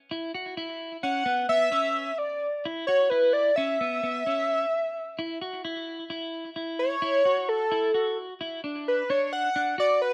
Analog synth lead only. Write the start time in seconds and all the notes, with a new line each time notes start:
1.03 F#5
1.49 E5
2.18 D5
2.87 C#5
3.10 B4
3.33 D5
3.56 E5
6.79 C#5
7.49 A4
8.88 B4
9.10 C#5
9.33 F#5
9.80 D5
10.02 B4